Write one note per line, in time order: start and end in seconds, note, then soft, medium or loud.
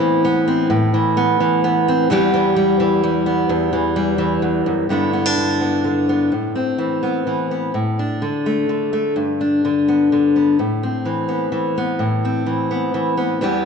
0.00 0.69 A2 medium
0.00 0.94 E3 medium
0.00 0.24 B3 medium
0.00 0.46 C4 medium
0.00 2.12 E4 medium
0.25 0.73 B3 medium
0.48 0.67 C4 medium
0.70 2.09 A2 medium
0.94 1.40 E3 medium
1.17 1.64 B3 medium
1.40 2.10 E3 medium
1.64 2.11 B3 medium
1.88 2.08 C4 medium
2.10 3.48 E2 medium
2.10 2.33 E3 medium
2.10 2.56 G3 medium
2.10 3.26 B3 medium
2.10 4.69 G4 medium
2.34 2.79 E3 medium
2.56 3.03 G3 medium
2.80 3.72 E3 medium
3.03 3.95 G3 medium
3.26 4.89 B3 medium
3.49 4.41 E2 medium
3.73 4.17 E3 medium
3.96 4.91 G3 medium
4.18 4.87 E3 medium
4.42 4.66 E2 medium
4.66 4.89 F#2 medium
4.89 6.28 G2 soft
4.89 5.37 D3 soft
4.89 5.13 B3 soft
4.89 5.13 D4 soft
4.89 7.75 E4 soft
5.13 5.26 B3 soft
5.26 6.32 D4 soft
5.38 5.83 D3 soft
5.61 6.08 B3 soft
5.84 6.32 D3 soft
6.09 6.29 B3 soft
6.32 7.73 A2 soft
6.55 7.71 C4 soft
6.78 7.26 E3 soft
7.03 7.50 B3 soft
7.27 7.71 E3 soft
7.51 7.71 B3 soft
7.74 8.21 A2 soft
7.99 9.14 D4 soft
8.22 8.68 D3 soft
8.46 8.92 A3 soft
8.69 9.63 D3 soft
8.93 9.13 A3 soft
9.16 10.55 G2 medium
9.41 10.55 D4 soft
9.65 10.11 D3 soft
9.88 10.35 B3 soft
10.12 10.59 D3 soft
10.36 10.62 B3 soft
10.59 11.98 A2 soft
10.83 11.98 C4 soft
11.05 11.51 E3 soft
11.29 11.77 B3 soft
11.52 12.46 E3 soft
11.78 12.02 B3 soft
11.99 13.41 A2 medium
12.25 13.39 C4 soft
12.46 12.94 E3 soft
12.71 13.17 B3 soft
12.94 13.41 E3 soft
13.17 13.42 B3 soft
13.41 13.65 E2 medium
13.41 13.65 E3 soft
13.41 13.65 G3 soft
13.41 13.65 B3 soft
13.41 13.65 G4 medium